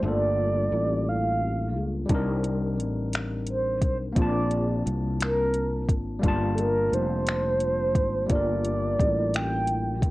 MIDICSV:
0, 0, Header, 1, 5, 480
1, 0, Start_track
1, 0, Key_signature, -2, "minor"
1, 0, Tempo, 689655
1, 17, Time_signature, 6, 3, 24, 8
1, 7034, End_track
2, 0, Start_track
2, 0, Title_t, "Soft synth lead"
2, 0, Program_c, 0, 80
2, 46, Note_on_c, 0, 74, 105
2, 758, Note_on_c, 0, 77, 97
2, 769, Note_off_c, 0, 74, 0
2, 1288, Note_off_c, 0, 77, 0
2, 2431, Note_on_c, 0, 72, 78
2, 2648, Note_off_c, 0, 72, 0
2, 2671, Note_on_c, 0, 72, 81
2, 2769, Note_off_c, 0, 72, 0
2, 2921, Note_on_c, 0, 74, 96
2, 3361, Note_off_c, 0, 74, 0
2, 3629, Note_on_c, 0, 70, 109
2, 4135, Note_off_c, 0, 70, 0
2, 4546, Note_on_c, 0, 69, 60
2, 4590, Note_on_c, 0, 70, 91
2, 4601, Note_off_c, 0, 69, 0
2, 4829, Note_on_c, 0, 72, 111
2, 4839, Note_off_c, 0, 70, 0
2, 5790, Note_on_c, 0, 74, 101
2, 5800, Note_off_c, 0, 72, 0
2, 6511, Note_on_c, 0, 79, 104
2, 6521, Note_off_c, 0, 74, 0
2, 7034, Note_off_c, 0, 79, 0
2, 7034, End_track
3, 0, Start_track
3, 0, Title_t, "Tine electric piano"
3, 0, Program_c, 1, 4
3, 0, Control_c, 1, 64, 127
3, 0, Note_on_c, 1, 55, 59
3, 0, Note_on_c, 1, 81, 76
3, 7, Note_on_c, 1, 57, 43
3, 22, Note_on_c, 1, 62, 52
3, 37, Note_on_c, 1, 65, 53
3, 50, Note_on_c, 1, 58, 54
3, 55, Note_on_c, 1, 69, 66
3, 1415, Note_off_c, 1, 55, 0
3, 1430, Note_on_c, 1, 55, 63
3, 1432, Note_off_c, 1, 62, 0
3, 1439, Note_off_c, 1, 65, 0
3, 1446, Note_off_c, 1, 58, 0
3, 1447, Note_on_c, 1, 60, 57
3, 1448, Note_off_c, 1, 69, 0
3, 1463, Note_on_c, 1, 62, 63
3, 1464, Control_c, 1, 64, 0
3, 1469, Note_off_c, 1, 81, 0
3, 1470, Note_off_c, 1, 57, 0
3, 1477, Note_on_c, 1, 63, 61
3, 1493, Note_on_c, 1, 70, 77
3, 1602, Control_c, 1, 64, 127
3, 2855, Note_off_c, 1, 55, 0
3, 2864, Note_off_c, 1, 60, 0
3, 2872, Note_off_c, 1, 62, 0
3, 2872, Note_on_c, 1, 58, 58
3, 2879, Note_off_c, 1, 63, 0
3, 2887, Note_off_c, 1, 70, 0
3, 2890, Note_on_c, 1, 60, 54
3, 2905, Control_c, 1, 64, 0
3, 2906, Note_on_c, 1, 62, 52
3, 2920, Note_on_c, 1, 65, 55
3, 2936, Note_on_c, 1, 81, 61
3, 3039, Control_c, 1, 64, 127
3, 4297, Note_off_c, 1, 58, 0
3, 4306, Note_off_c, 1, 60, 0
3, 4309, Note_on_c, 1, 55, 71
3, 4313, Note_off_c, 1, 62, 0
3, 4320, Note_off_c, 1, 65, 0
3, 4324, Note_on_c, 1, 58, 66
3, 4329, Note_off_c, 1, 81, 0
3, 4339, Note_on_c, 1, 62, 67
3, 4345, Control_c, 1, 64, 0
3, 4354, Note_on_c, 1, 65, 67
3, 4371, Note_on_c, 1, 81, 78
3, 4474, Control_c, 1, 64, 127
3, 5735, Note_off_c, 1, 55, 0
3, 5743, Note_off_c, 1, 58, 0
3, 5750, Note_off_c, 1, 62, 0
3, 5751, Note_on_c, 1, 55, 64
3, 5758, Note_off_c, 1, 65, 0
3, 5766, Note_off_c, 1, 81, 0
3, 5767, Note_on_c, 1, 58, 54
3, 5785, Note_on_c, 1, 62, 54
3, 5800, Note_on_c, 1, 65, 52
3, 5815, Note_on_c, 1, 70, 64
3, 7034, Note_off_c, 1, 55, 0
3, 7034, Note_off_c, 1, 58, 0
3, 7034, Note_off_c, 1, 62, 0
3, 7034, Note_off_c, 1, 65, 0
3, 7034, Note_off_c, 1, 70, 0
3, 7034, End_track
4, 0, Start_track
4, 0, Title_t, "Fretless electric bass"
4, 0, Program_c, 2, 35
4, 19, Note_on_c, 2, 31, 102
4, 470, Note_off_c, 2, 31, 0
4, 501, Note_on_c, 2, 33, 84
4, 1224, Note_off_c, 2, 33, 0
4, 1224, Note_on_c, 2, 37, 77
4, 1437, Note_off_c, 2, 37, 0
4, 1458, Note_on_c, 2, 36, 100
4, 1944, Note_off_c, 2, 36, 0
4, 1944, Note_on_c, 2, 33, 80
4, 2660, Note_off_c, 2, 33, 0
4, 2660, Note_on_c, 2, 35, 82
4, 2875, Note_off_c, 2, 35, 0
4, 2901, Note_on_c, 2, 34, 94
4, 3351, Note_off_c, 2, 34, 0
4, 3383, Note_on_c, 2, 36, 88
4, 4100, Note_off_c, 2, 36, 0
4, 4100, Note_on_c, 2, 32, 82
4, 4315, Note_off_c, 2, 32, 0
4, 4339, Note_on_c, 2, 31, 91
4, 4790, Note_off_c, 2, 31, 0
4, 4819, Note_on_c, 2, 29, 90
4, 5538, Note_off_c, 2, 29, 0
4, 5538, Note_on_c, 2, 32, 84
4, 5754, Note_off_c, 2, 32, 0
4, 5778, Note_on_c, 2, 31, 102
4, 6229, Note_off_c, 2, 31, 0
4, 6263, Note_on_c, 2, 33, 83
4, 6978, Note_off_c, 2, 33, 0
4, 6978, Note_on_c, 2, 37, 83
4, 7034, Note_off_c, 2, 37, 0
4, 7034, End_track
5, 0, Start_track
5, 0, Title_t, "Drums"
5, 1456, Note_on_c, 9, 42, 57
5, 1457, Note_on_c, 9, 36, 89
5, 1525, Note_off_c, 9, 42, 0
5, 1526, Note_off_c, 9, 36, 0
5, 1698, Note_on_c, 9, 42, 45
5, 1768, Note_off_c, 9, 42, 0
5, 1947, Note_on_c, 9, 42, 38
5, 2017, Note_off_c, 9, 42, 0
5, 2179, Note_on_c, 9, 42, 64
5, 2193, Note_on_c, 9, 26, 89
5, 2249, Note_off_c, 9, 42, 0
5, 2262, Note_off_c, 9, 26, 0
5, 2412, Note_on_c, 9, 42, 46
5, 2482, Note_off_c, 9, 42, 0
5, 2656, Note_on_c, 9, 36, 78
5, 2657, Note_on_c, 9, 42, 45
5, 2725, Note_off_c, 9, 36, 0
5, 2726, Note_off_c, 9, 42, 0
5, 2898, Note_on_c, 9, 36, 93
5, 2898, Note_on_c, 9, 42, 56
5, 2967, Note_off_c, 9, 36, 0
5, 2968, Note_off_c, 9, 42, 0
5, 3138, Note_on_c, 9, 42, 45
5, 3208, Note_off_c, 9, 42, 0
5, 3388, Note_on_c, 9, 42, 42
5, 3457, Note_off_c, 9, 42, 0
5, 3621, Note_on_c, 9, 42, 73
5, 3635, Note_on_c, 9, 26, 94
5, 3691, Note_off_c, 9, 42, 0
5, 3704, Note_off_c, 9, 26, 0
5, 3854, Note_on_c, 9, 42, 47
5, 3923, Note_off_c, 9, 42, 0
5, 4096, Note_on_c, 9, 36, 81
5, 4100, Note_on_c, 9, 42, 47
5, 4166, Note_off_c, 9, 36, 0
5, 4170, Note_off_c, 9, 42, 0
5, 4337, Note_on_c, 9, 36, 89
5, 4338, Note_on_c, 9, 42, 58
5, 4407, Note_off_c, 9, 36, 0
5, 4408, Note_off_c, 9, 42, 0
5, 4579, Note_on_c, 9, 42, 47
5, 4648, Note_off_c, 9, 42, 0
5, 4826, Note_on_c, 9, 42, 42
5, 4896, Note_off_c, 9, 42, 0
5, 5058, Note_on_c, 9, 42, 68
5, 5072, Note_on_c, 9, 26, 94
5, 5128, Note_off_c, 9, 42, 0
5, 5141, Note_off_c, 9, 26, 0
5, 5293, Note_on_c, 9, 42, 47
5, 5362, Note_off_c, 9, 42, 0
5, 5535, Note_on_c, 9, 36, 81
5, 5537, Note_on_c, 9, 42, 49
5, 5604, Note_off_c, 9, 36, 0
5, 5607, Note_off_c, 9, 42, 0
5, 5774, Note_on_c, 9, 42, 55
5, 5776, Note_on_c, 9, 36, 86
5, 5844, Note_off_c, 9, 42, 0
5, 5846, Note_off_c, 9, 36, 0
5, 6017, Note_on_c, 9, 42, 47
5, 6087, Note_off_c, 9, 42, 0
5, 6260, Note_on_c, 9, 36, 87
5, 6267, Note_on_c, 9, 42, 42
5, 6329, Note_off_c, 9, 36, 0
5, 6336, Note_off_c, 9, 42, 0
5, 6501, Note_on_c, 9, 42, 73
5, 6514, Note_on_c, 9, 26, 94
5, 6571, Note_off_c, 9, 42, 0
5, 6584, Note_off_c, 9, 26, 0
5, 6734, Note_on_c, 9, 42, 46
5, 6803, Note_off_c, 9, 42, 0
5, 6976, Note_on_c, 9, 36, 81
5, 6980, Note_on_c, 9, 42, 49
5, 7034, Note_off_c, 9, 36, 0
5, 7034, Note_off_c, 9, 42, 0
5, 7034, End_track
0, 0, End_of_file